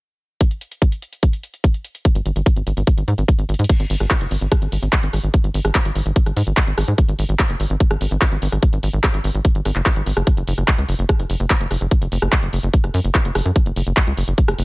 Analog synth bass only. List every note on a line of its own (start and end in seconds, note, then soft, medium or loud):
2.15 2.21 G#1 medium
2.26 2.31 G#1 loud
2.36 2.42 G#1 loud
2.56 2.62 G#1 medium
2.67 2.73 G#1 loud
2.77 2.83 G#1 loud
2.98 3.03 G#1 medium
3.08 3.14 G#2 loud
3.18 3.24 G#1 medium
3.39 3.44 G#1 medium
3.49 3.55 G#1 loud
3.59 3.65 G#2 medium
3.80 3.86 G#1 medium
3.90 3.96 G#1 loud
4.00 4.06 G#1 medium
4.21 4.27 F#1 medium
4.31 4.37 G#1 loud
4.41 4.47 G#1 loud
4.62 4.68 G#1 medium
4.72 4.78 G#1 medium
4.82 4.88 G#1 medium
5.03 5.09 G#1 medium
5.13 5.19 G#1 loud
5.24 5.29 G#1 medium
5.44 5.50 G#1 medium
5.54 5.60 G#1 loud
5.65 5.70 G#1 medium
5.85 5.91 G#1 medium
5.95 6.01 G#1 loud
6.06 6.12 G#1 loud
6.26 6.32 G#1 medium
6.37 6.42 G#2 loud
6.47 6.53 G#1 medium
6.67 6.73 G#1 medium
6.78 6.83 G#1 loud
6.88 6.94 G#2 medium
7.08 7.14 G#1 medium
7.19 7.25 G#1 loud
7.29 7.35 G#1 loud
7.50 7.55 F#1 medium
7.60 7.66 G#1 loud
7.70 7.76 G#1 loud
7.91 7.96 G#1 medium
8.01 8.07 G#1 medium
8.11 8.17 G#1 medium
8.32 8.38 G#1 medium
8.42 8.48 G#1 loud
8.52 8.58 G#1 medium
8.73 8.79 G#1 medium
8.83 8.89 G#1 loud
8.93 8.99 G#1 medium
9.14 9.20 G#1 medium
9.24 9.30 G#1 loud
9.35 9.40 G#1 medium
9.55 9.61 G#1 medium
9.65 9.71 G#1 loud
9.76 9.81 F#1 medium
9.96 10.02 G#1 medium
10.06 10.12 G#1 loud
10.17 10.23 F#1 medium
10.37 10.43 F#1 medium
10.48 10.53 F#1 loud
10.58 10.64 F#1 medium
10.78 10.84 C#2 medium
10.89 10.94 F#1 loud
10.99 11.05 F#1 medium
11.19 11.25 F#1 medium
11.30 11.36 F#1 loud
11.40 11.46 F#1 medium
11.61 11.66 F#1 medium
11.71 11.77 F#1 loud
11.81 11.87 F#1 medium
12.02 12.07 F#1 medium
12.12 12.18 F#1 loud
12.22 12.28 F#1 medium
12.43 12.49 F#1 medium
12.53 12.59 F#1 loud
12.63 12.69 F#1 loud
12.84 12.90 F#1 medium
12.94 13.00 F#2 loud
13.04 13.10 F#1 medium
13.25 13.31 F#1 medium
13.35 13.41 F#1 loud
13.46 13.51 F#2 medium
13.66 13.72 F#1 medium
13.76 13.82 F#1 loud
13.87 13.92 F#1 loud
14.07 14.13 C#2 medium
14.17 14.23 F#1 loud
14.28 14.34 F#1 medium
14.48 14.54 F#1 medium
14.59 14.64 F#1 loud